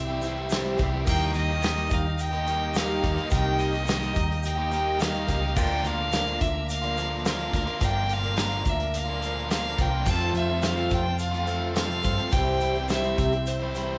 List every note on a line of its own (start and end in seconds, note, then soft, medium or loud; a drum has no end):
0.00 0.75 C2 medium
0.00 5.52 G4 medium
0.00 0.79 E5 medium
0.00 1.03 E5 medium
0.00 1.03 C6 medium
0.08 0.23 G3 medium
0.08 0.21 C4 soft
0.08 0.24 E4 medium
0.08 0.25 G4 medium
0.22 0.49 E3 medium
0.22 0.51 G3 medium
0.22 0.50 C4 medium
0.22 0.51 E4 medium
0.22 0.52 G4 medium
0.22 closed hi-hat medium
0.22 shaker medium
0.49 0.92 C3 medium
0.49 0.75 E3 medium
0.49 0.66 G3 loud
0.49 0.79 C4 medium
0.49 0.63 E4 loud
0.49 0.62 G4 loud
0.49 snare loud
0.49 closed hi-hat loud
0.49 shaker loud
0.63 0.76 G3 medium
0.63 0.77 E4 medium
0.63 0.78 G4 medium
0.63 closed hi-hat soft
0.76 1.06 C2 medium
0.76 1.04 E3 medium
0.76 0.93 G3 medium
0.76 0.91 E4 medium
0.76 0.90 G4 medium
0.76 kick medium
0.76 closed hi-hat medium
0.76 shaker medium
0.81 0.94 C4 medium
0.91 1.05 G3 medium
0.91 1.05 E4 medium
0.91 1.07 G4 medium
0.97 1.08 C4 soft
1.04 1.34 D#2 loud
1.04 1.31 D#3 medium
1.04 1.49 G3 medium
1.04 1.32 A#3 loud
1.04 1.34 D#4 medium
1.04 1.35 G4 loud
1.04 5.51 D#5 medium
1.04 1.33 G5 loud
1.04 10.01 A#5 medium
1.04 kick loud
1.04 crash loud
1.04 shaker loud
1.32 1.88 D#2 medium
1.32 1.60 D#3 medium
1.32 1.61 A#3 medium
1.32 1.63 D#4 medium
1.32 1.63 G4 medium
1.32 closed hi-hat medium
1.32 shaker medium
1.36 1.95 D#5 loud
1.48 1.62 A#3 soft
1.48 1.62 D#4 medium
1.48 1.62 G4 medium
1.60 1.89 D#3 loud
1.60 2.05 G3 medium
1.60 1.78 A#3 medium
1.60 1.76 D#4 loud
1.60 1.74 G4 loud
1.60 closed hi-hat medium
1.60 shaker loud
1.64 snare loud
1.75 1.89 A#3 medium
1.75 1.89 D#4 medium
1.75 1.90 G4 medium
1.75 closed hi-hat medium
1.89 2.99 D#2 medium
1.89 2.22 F5 medium
1.89 muted overdriven electric guitar stroke soft
1.89 kick loud
1.89 closed hi-hat medium
1.89 shaker medium
2.04 2.32 A#3 soft
2.04 2.31 D#4 medium
2.04 2.30 G4 medium
2.18 2.78 G5 loud
2.18 closed hi-hat medium
2.18 shaker medium
2.31 2.45 A#3 medium
2.31 2.45 D#4 medium
2.31 2.46 G4 medium
2.31 closed hi-hat soft
2.44 2.71 D#3 medium
2.44 2.75 G3 medium
2.44 2.73 A#3 medium
2.44 2.73 D#4 medium
2.44 2.74 G4 medium
2.44 closed hi-hat medium
2.44 shaker medium
2.72 2.99 D#3 loud
2.72 2.88 A#3 medium
2.72 2.86 D#4 loud
2.72 2.85 G4 medium
2.72 closed hi-hat medium
2.72 shaker medium
2.76 3.04 D#3 medium
2.76 3.02 G3 medium
2.76 3.32 F5 loud
2.76 snare loud
2.86 3.01 A#3 medium
2.86 3.01 D#4 medium
2.86 3.02 G4 medium
2.90 closed hi-hat soft
3.00 3.17 D#2 loud
3.00 3.26 D#3 medium
3.00 3.17 G3 medium
3.00 3.16 A#3 medium
3.00 3.14 D#4 medium
3.00 3.12 G4 medium
3.00 kick medium
3.00 closed hi-hat medium
3.13 3.28 A#3 medium
3.13 3.29 D#4 medium
3.13 3.30 G4 medium
3.18 closed hi-hat soft
3.28 3.55 D#3 medium
3.28 3.73 G3 medium
3.28 3.57 A#3 loud
3.28 3.57 D#4 loud
3.28 3.58 G4 loud
3.28 shaker loud
3.32 4.12 C2 loud
3.32 3.61 G5 loud
3.32 kick loud
3.32 closed hi-hat loud
3.56 3.83 D#3 medium
3.56 3.84 A#3 medium
3.56 3.84 D#4 medium
3.56 3.85 G4 medium
3.56 4.44 D#5 loud
3.56 shaker medium
3.60 closed hi-hat medium
3.72 3.88 A#3 soft
3.72 3.88 D#4 medium
3.72 3.87 G4 medium
3.72 closed hi-hat soft
3.84 4.13 D#3 medium
3.84 4.01 A#3 loud
3.84 3.99 D#4 medium
3.84 3.98 G4 loud
3.84 shaker medium
3.88 4.30 D#3 medium
3.88 4.30 G3 medium
3.88 4.30 A#3 medium
3.88 4.28 D#4 medium
3.88 snare loud
3.88 closed hi-hat loud
3.99 4.14 A#3 medium
3.99 4.13 D#4 medium
3.99 4.13 G4 medium
4.03 closed hi-hat medium
4.14 5.24 D#2 medium
4.14 muted overdriven electric guitar stroke medium
4.14 kick medium
4.14 closed hi-hat medium
4.14 shaker medium
4.28 4.57 A#3 soft
4.28 4.56 D#4 medium
4.28 4.55 G4 medium
4.28 closed hi-hat soft
4.43 5.02 G5 loud
4.43 closed hi-hat loud
4.43 shaker medium
4.56 4.71 A#3 medium
4.56 4.71 D#4 medium
4.56 4.72 G4 medium
4.70 4.97 D#3 medium
4.70 4.98 G3 medium
4.70 4.99 A#3 medium
4.70 4.99 D#4 medium
4.70 5.00 G4 medium
4.70 closed hi-hat medium
4.70 shaker medium
4.98 5.25 D#3 medium
4.98 5.26 G3 medium
4.98 5.15 A#3 medium
4.98 5.14 D#4 loud
4.98 5.12 G4 loud
4.98 5.59 F5 loud
4.98 snare loud
4.98 closed hi-hat loud
4.98 shaker loud
5.13 5.27 A#3 medium
5.13 5.27 D#4 medium
5.13 5.28 G4 medium
5.13 closed hi-hat soft
5.26 5.55 C#2 medium
5.26 5.53 D#3 medium
5.26 5.42 G3 medium
5.26 5.43 A#3 medium
5.26 5.41 D#4 medium
5.26 5.40 G4 medium
5.26 kick medium
5.26 closed hi-hat medium
5.26 shaker medium
5.41 5.55 A#3 medium
5.41 5.54 D#4 medium
5.41 5.54 G4 medium
5.55 5.83 D2 medium
5.55 5.82 D3 medium
5.55 5.99 F3 medium
5.55 5.84 A#3 loud
5.55 5.85 D4 loud
5.55 10.02 F4 medium
5.55 5.86 F4 loud
5.55 5.99 A#4 medium
5.55 10.03 D5 medium
5.55 5.88 G5 loud
5.55 kick loud
5.55 crash loud
5.55 shaker loud
5.83 6.37 D2 medium
5.83 6.11 D3 medium
5.83 6.13 A#3 medium
5.83 6.14 D4 medium
5.83 6.15 F4 medium
5.83 6.43 F5 loud
5.83 closed hi-hat medium
5.83 shaker medium
6.00 6.12 A#3 soft
6.00 6.12 D4 medium
6.00 6.13 A#4 medium
6.12 6.40 D3 medium
6.12 6.55 F3 medium
6.12 6.29 A#3 medium
6.12 6.28 D4 loud
6.12 6.26 F4 loud
6.12 6.54 A#4 medium
6.12 snare loud
6.12 closed hi-hat loud
6.12 shaker loud
6.26 6.40 A#3 soft
6.26 6.40 D4 medium
6.26 6.41 F4 medium
6.26 closed hi-hat medium
6.40 7.49 D2 medium
6.40 6.69 E5 loud
6.40 muted overdriven electric guitar stroke soft
6.40 kick loud
6.40 closed hi-hat medium
6.40 shaker medium
6.55 6.83 A#3 soft
6.55 6.82 D4 soft
6.55 6.81 A#4 medium
6.69 7.22 F5 loud
6.69 closed hi-hat loud
6.69 shaker loud
6.82 6.96 A#3 medium
6.82 6.97 D4 medium
6.82 6.98 F4 medium
6.82 6.96 A#4 medium
6.82 closed hi-hat soft
6.96 7.23 D3 medium
6.96 7.11 F3 medium
6.96 7.24 A#3 medium
6.96 7.25 D4 medium
6.96 7.27 F4 medium
6.96 7.09 A#4 medium
6.96 closed hi-hat medium
6.96 shaker medium
7.10 7.24 A#3 soft
7.10 7.25 D4 soft
7.10 7.24 A#4 soft
7.24 7.50 D3 loud
7.24 7.50 F3 medium
7.24 7.40 A#3 loud
7.24 7.38 D4 loud
7.24 7.37 F4 medium
7.24 7.53 A#4 loud
7.24 snare loud
7.24 closed hi-hat medium
7.24 shaker loud
7.28 7.86 F5 loud
7.38 7.51 A#3 medium
7.38 7.53 D4 medium
7.38 7.54 F4 medium
7.38 closed hi-hat soft
7.51 7.66 D2 medium
7.51 7.78 D3 medium
7.51 7.66 F3 medium
7.51 7.67 A#3 medium
7.51 7.66 D4 medium
7.51 7.65 F4 medium
7.51 7.66 A#4 medium
7.51 kick medium
7.51 closed hi-hat medium
7.51 shaker medium
7.66 7.78 A#3 medium
7.66 7.80 D4 medium
7.66 7.81 F4 medium
7.66 7.81 A#4 soft
7.66 closed hi-hat soft
7.79 8.62 G1 medium
7.79 8.05 D3 loud
7.79 8.23 F3 medium
7.79 8.06 A#3 loud
7.79 8.07 D4 loud
7.79 8.09 F4 loud
7.79 8.23 A#4 medium
7.79 kick loud
7.79 closed hi-hat loud
7.79 shaker loud
7.85 8.15 G5 loud
8.06 8.33 D3 medium
8.06 8.35 A#3 medium
8.06 8.35 D4 medium
8.06 8.37 F4 medium
8.06 closed hi-hat medium
8.10 8.71 F5 loud
8.10 shaker medium
8.24 8.37 A#3 soft
8.24 8.37 D4 medium
8.24 8.37 A#4 medium
8.24 closed hi-hat soft
8.34 8.62 D3 loud
8.34 8.79 F3 medium
8.34 8.50 A#3 loud
8.34 8.49 D4 loud
8.34 8.48 F4 loud
8.34 8.79 A#4 medium
8.34 snare loud
8.34 closed hi-hat loud
8.39 shaker loud
8.48 8.63 A#3 medium
8.48 8.63 D4 medium
8.48 8.63 F4 medium
8.48 closed hi-hat medium
8.63 9.74 D2 medium
8.63 muted overdriven electric guitar stroke medium
8.63 kick medium
8.63 closed hi-hat medium
8.63 shaker medium
8.69 8.98 E5 loud
8.80 9.09 A#3 soft
8.80 9.09 D4 soft
8.80 9.08 A#4 medium
8.80 closed hi-hat soft
8.94 9.52 F5 medium
8.94 closed hi-hat loud
8.94 shaker medium
9.05 9.19 A#3 medium
9.05 9.21 D4 medium
9.05 9.21 F4 medium
9.05 9.23 A#4 medium
9.19 9.47 D3 medium
9.19 9.48 A#3 medium
9.19 9.49 D4 medium
9.19 9.50 F4 medium
9.19 closed hi-hat medium
9.19 shaker medium
9.24 9.50 F3 medium
9.24 9.50 A#3 medium
9.24 9.52 A#4 medium
9.48 9.76 D3 medium
9.48 9.79 F3 medium
9.48 9.65 A#3 loud
9.48 9.64 D4 loud
9.48 9.62 F4 loud
9.48 9.83 F5 loud
9.48 snare loud
9.48 closed hi-hat loud
9.48 shaker loud
9.53 9.80 A#4 medium
9.63 9.78 A#3 medium
9.63 9.78 D4 medium
9.63 9.79 F4 medium
9.63 closed hi-hat soft
9.78 10.05 C2 medium
9.78 10.04 D3 medium
9.78 9.93 F3 medium
9.78 9.94 A#3 medium
9.78 9.92 D4 medium
9.78 9.90 F4 loud
9.78 10.11 G5 loud
9.78 kick medium
9.78 closed hi-hat medium
9.78 shaker medium
9.82 9.92 A#4 medium
9.91 10.06 A#3 medium
9.91 10.05 D4 medium
9.91 10.04 F4 medium
9.91 10.07 A#4 medium
10.05 10.60 F2 medium
10.05 10.33 F2 loud
10.05 10.61 C3 loud
10.05 10.31 F3 loud
10.05 10.33 A3 loud
10.05 10.34 C4 loud
10.05 12.30 F4 medium
10.05 10.35 F4 loud
10.05 13.98 C5 medium
10.05 12.30 A5 medium
10.05 kick loud
10.05 crash loud
10.05 shaker medium
10.10 10.48 A4 medium
10.10 10.36 A5 loud
10.32 10.88 F2 medium
10.32 10.62 F3 medium
10.32 10.62 A3 medium
10.32 10.63 C4 medium
10.32 10.63 F4 medium
10.32 closed hi-hat medium
10.32 shaker medium
10.37 10.68 E5 loud
10.49 10.61 C4 soft
10.49 10.62 F4 soft
10.49 10.62 A4 medium
10.61 11.05 F2 loud
10.61 11.05 C3 medium
10.61 10.77 F3 loud
10.61 10.77 A3 loud
10.61 10.76 C4 loud
10.61 10.74 F4 loud
10.61 11.05 A4 medium
10.61 snare loud
10.61 closed hi-hat loud
10.61 shaker medium
10.67 10.95 F5 medium
10.76 10.90 F3 medium
10.76 10.90 A3 medium
10.76 10.91 C4 medium
10.76 10.90 F4 medium
10.76 closed hi-hat medium
10.90 12.00 F2 medium
10.90 11.19 G5 loud
10.90 muted overdriven electric guitar stroke medium
10.90 kick medium
10.90 closed hi-hat medium
10.90 shaker medium
11.06 11.34 C4 soft
11.06 11.33 F4 soft
11.06 11.31 A4 medium
11.18 11.72 F5 loud
11.18 closed hi-hat loud
11.18 shaker loud
11.31 11.44 F3 medium
11.31 11.45 A3 medium
11.31 11.47 C4 medium
11.31 11.47 F4 medium
11.31 11.47 A4 medium
11.31 closed hi-hat soft
11.45 11.73 F3 medium
11.45 11.74 A3 medium
11.45 11.75 C4 medium
11.45 11.75 F4 medium
11.45 11.76 A4 medium
11.45 closed hi-hat medium
11.45 shaker medium
11.73 12.17 F2 loud
11.73 12.18 C3 loud
11.73 11.90 F3 loud
11.73 11.89 A3 loud
11.73 11.88 C4 loud
11.73 11.86 F4 loud
11.73 12.33 F5 loud
11.73 snare loud
11.73 closed hi-hat medium
11.73 shaker loud
11.77 12.05 A4 loud
11.88 11.99 F3 medium
11.88 12.01 A3 medium
11.88 12.03 C4 medium
11.88 12.03 F4 medium
11.88 closed hi-hat soft
12.01 12.18 G2 loud
12.01 12.18 F3 medium
12.01 12.17 A3 medium
12.01 12.16 C4 medium
12.01 12.14 F4 medium
12.01 kick loud
12.01 shaker medium
12.05 12.16 A4 medium
12.05 closed hi-hat medium
12.16 12.31 F3 medium
12.16 12.31 A3 medium
12.16 12.33 C4 medium
12.16 12.30 F4 medium
12.16 12.32 A4 medium
12.16 closed hi-hat soft
12.30 13.14 C2 medium
12.30 12.87 C3 medium
12.30 12.58 E3 medium
12.30 12.60 G3 loud
12.30 12.60 C4 loud
12.30 13.98 E4 medium
12.30 12.61 E4 loud
12.30 13.98 G5 medium
12.30 12.89 G5 loud
12.30 kick loud
12.30 closed hi-hat medium
12.30 shaker loud
12.34 12.72 G4 medium
12.59 12.88 E3 medium
12.59 12.89 G3 medium
12.59 12.90 C4 medium
12.59 12.90 E4 medium
12.59 closed hi-hat medium
12.59 shaker medium
12.73 12.89 C4 soft
12.73 12.89 E4 medium
12.73 12.88 G4 medium
12.73 closed hi-hat soft
12.88 13.31 C3 loud
12.88 13.16 E3 medium
12.88 13.06 G3 loud
12.88 13.04 C4 loud
12.88 13.02 E4 loud
12.88 13.31 G4 loud
12.88 13.48 E5 loud
12.88 snare loud
12.88 closed hi-hat medium
12.88 shaker medium
13.03 13.17 G3 medium
13.03 13.17 C4 medium
13.03 13.18 E4 medium
13.03 closed hi-hat medium
13.17 13.98 C2 medium
13.17 muted overdriven electric guitar stroke soft
13.17 kick medium
13.17 closed hi-hat medium
13.17 shaker medium
13.32 13.62 C4 soft
13.32 13.61 E4 medium
13.32 13.61 G4 medium
13.32 closed hi-hat soft
13.46 13.98 C5 medium
13.46 closed hi-hat loud
13.46 shaker medium
13.60 13.74 G3 medium
13.60 13.75 C4 medium
13.60 13.76 E4 medium
13.60 13.75 G4 medium
13.74 13.98 E3 medium
13.74 13.98 G3 medium
13.74 13.98 C4 medium
13.74 13.98 E4 medium
13.74 13.98 G4 medium
13.74 closed hi-hat medium
13.74 shaker medium